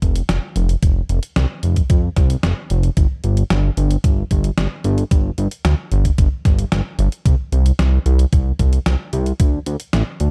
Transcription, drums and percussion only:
0.02 kick medium
0.02 closed hi-hat medium
0.16 closed hi-hat medium
0.29 snare loud
0.29 closed hi-hat medium
0.56 closed hi-hat medium
0.69 closed hi-hat medium
0.83 kick loud
0.83 closed hi-hat loud
1.09 closed hi-hat medium
1.23 closed hi-hat medium
1.36 snare loud
1.36 closed hi-hat medium
1.63 closed hi-hat medium
1.76 kick medium
1.76 closed hi-hat medium
1.90 kick loud
1.90 closed hi-hat medium
2.16 kick loud
2.16 snare soft
2.16 closed hi-hat medium
2.30 closed hi-hat medium
2.43 snare loud
2.43 closed hi-hat medium
2.70 closed hi-hat medium
2.83 closed hi-hat medium
2.97 kick loud
2.97 closed hi-hat loud
3.24 closed hi-hat medium
3.37 closed hi-hat medium
3.50 snare loud
3.50 closed hi-hat medium
3.77 closed hi-hat medium
3.91 closed hi-hat medium
4.04 kick loud
4.04 closed hi-hat medium
4.31 kick medium
4.31 closed hi-hat medium
4.44 closed hi-hat medium
4.58 snare loud
4.58 closed hi-hat medium
4.84 closed hi-hat medium
4.98 closed hi-hat medium
5.11 kick loud
5.11 closed hi-hat medium
5.38 closed hi-hat medium
5.51 closed hi-hat medium
5.65 snare loud
5.65 closed hi-hat medium
5.92 closed hi-hat medium
6.05 kick medium
6.05 closed hi-hat medium
6.18 kick loud
6.18 closed hi-hat medium
6.45 kick loud
6.45 snare soft
6.45 closed hi-hat medium
6.59 closed hi-hat medium
6.72 snare loud
6.72 closed hi-hat medium
6.99 closed hi-hat medium
7.12 closed hi-hat medium
7.26 kick loud
7.26 closed hi-hat loud
7.52 closed hi-hat medium
7.66 closed hi-hat medium
7.79 snare loud
7.79 closed hi-hat medium
8.06 closed hi-hat medium
8.19 closed hi-hat medium
8.33 kick loud
8.33 closed hi-hat medium
8.59 kick medium
8.59 closed hi-hat medium
8.73 closed hi-hat medium
8.86 snare loud
8.86 closed hi-hat medium
9.13 closed hi-hat medium
9.26 closed hi-hat medium
9.40 kick loud
9.40 closed hi-hat loud
9.66 closed hi-hat medium
9.80 closed hi-hat medium
9.93 snare loud
9.93 closed hi-hat medium
10.20 closed hi-hat medium

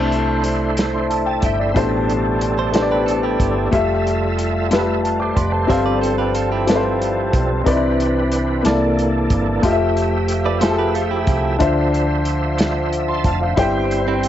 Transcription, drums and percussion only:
0.12 closed hi-hat soft
0.44 closed hi-hat medium
0.77 snare loud
0.77 closed hi-hat medium
1.11 closed hi-hat soft
1.42 kick medium
1.42 closed hi-hat medium
1.76 kick medium
1.76 closed hi-hat medium
2.10 closed hi-hat soft
2.41 closed hi-hat medium
2.74 snare loud
2.74 closed hi-hat medium
3.08 closed hi-hat soft
3.40 kick medium
3.40 closed hi-hat medium
3.73 kick medium
3.73 closed hi-hat medium
4.07 closed hi-hat soft
4.39 closed hi-hat medium
4.71 snare loud
4.71 closed hi-hat medium
5.05 closed hi-hat soft
5.37 kick medium
5.37 closed hi-hat medium
5.70 kick loud
5.70 closed hi-hat medium
6.03 closed hi-hat soft
6.35 closed hi-hat medium
6.68 snare loud
6.68 closed hi-hat medium
7.02 closed hi-hat soft
7.33 kick medium
7.33 closed hi-hat medium
7.66 kick medium
7.66 closed hi-hat medium
8.00 closed hi-hat soft
8.32 closed hi-hat medium
8.65 snare loud
8.65 closed hi-hat medium
8.99 closed hi-hat soft
9.30 kick medium
9.30 closed hi-hat medium
9.63 kick medium
9.63 closed hi-hat medium
9.97 closed hi-hat soft
10.28 closed hi-hat medium
10.61 snare loud
10.61 closed hi-hat medium
10.95 closed hi-hat medium
11.27 kick medium
11.27 closed hi-hat medium
11.60 kick medium
11.60 closed hi-hat medium
11.94 closed hi-hat soft
12.25 closed hi-hat medium
12.58 snare loud
12.58 closed hi-hat medium
12.93 closed hi-hat soft
13.24 kick medium
13.24 closed hi-hat medium
13.57 kick loud
13.57 closed hi-hat medium
13.91 closed hi-hat soft
14.23 closed hi-hat medium

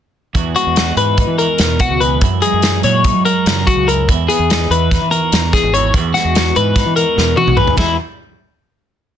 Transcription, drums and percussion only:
0.35 kick medium
0.35 closed hi-hat medium
0.56 closed hi-hat medium
0.76 snare loud
0.76 closed hi-hat medium
0.97 closed hi-hat medium
1.18 kick loud
1.18 closed hi-hat medium
1.39 closed hi-hat medium
1.58 snare medium
1.58 closed hi-hat medium
1.79 kick medium
1.79 closed hi-hat medium
2.01 closed hi-hat medium
2.21 kick loud
2.21 closed hi-hat medium
2.42 closed hi-hat medium
2.62 snare medium
2.62 closed hi-hat medium
2.83 closed hi-hat medium
3.04 kick medium
3.04 closed hi-hat medium
3.26 closed hi-hat soft
3.46 snare loud
3.46 closed hi-hat medium
3.67 kick medium
3.67 closed hi-hat medium
3.89 closed hi-hat medium
4.09 kick medium
4.09 closed hi-hat medium
4.29 closed hi-hat medium
4.50 snare loud
4.50 closed hi-hat medium
4.71 closed hi-hat medium
4.91 kick loud
4.91 snare soft
4.91 closed hi-hat medium
5.12 closed hi-hat medium
5.32 snare loud
5.32 closed hi-hat medium
5.53 kick medium
5.53 snare soft
5.53 closed hi-hat medium
5.74 closed hi-hat medium
5.94 kick loud
5.94 closed hi-hat medium
6.15 snare soft
6.15 closed hi-hat medium
6.35 snare loud
6.35 closed hi-hat medium
6.56 closed hi-hat medium
6.76 kick loud
6.76 snare soft
6.76 closed hi-hat medium
6.97 closed hi-hat medium
7.18 snare medium
7.37 high tom medium
7.48 mid tom medium
7.57 mid tom medium
7.67 floor tom medium
7.78 kick medium
7.78 snare medium
7.78 ride bell medium

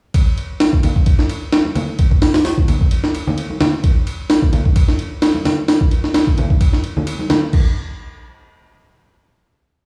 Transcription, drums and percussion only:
0.14 kick loud
0.14 ride medium
0.38 ride medium
0.60 snare loud
0.60 open hi-hat medium
0.73 kick loud
0.83 ride medium
0.83 low conga medium
0.96 kick medium
1.06 kick loud
1.06 ride medium
1.19 snare soft
1.29 ride medium
1.53 snare loud
1.53 ride medium
1.65 high conga medium
1.75 ride medium
1.75 low conga loud
1.99 kick loud
1.99 ride medium
2.11 kick medium
2.22 snare loud
2.22 open hi-hat medium
2.34 snare loud
2.34 open hi-hat medium
2.45 snare loud
2.45 open hi-hat medium
2.58 kick loud
2.68 ride medium
2.68 low conga medium
2.81 kick loud
2.91 ride loud
3.04 snare medium
3.15 ride medium
3.27 low conga loud
3.38 ride medium
3.50 high conga medium
3.61 snare loud
3.61 ride medium
3.61 low conga loud
3.84 kick loud
3.84 ride medium
4.07 ride medium
4.30 snare loud
4.30 open hi-hat medium
4.42 kick loud
4.53 ride medium
4.53 low conga medium
4.65 kick loud
4.76 kick loud
4.76 ride medium
4.88 snare soft
4.99 ride medium
5.22 snare loud
5.22 ride medium
5.34 high conga medium
5.45 snare loud
5.45 open hi-hat medium
5.45 low conga medium
5.68 snare loud
5.68 open hi-hat medium
5.81 kick loud
5.91 ride medium
6.04 snare soft
6.14 snare loud
6.14 ride medium
6.27 kick medium
6.38 ride medium
6.38 low conga medium
6.50 kick loud
6.61 kick loud
6.61 ride medium
6.73 snare soft
6.84 ride medium
6.97 low conga medium
7.07 ride loud
7.19 high conga medium
7.30 snare loud
7.30 ride medium
7.30 low conga medium
7.53 kick loud
7.53 crash medium

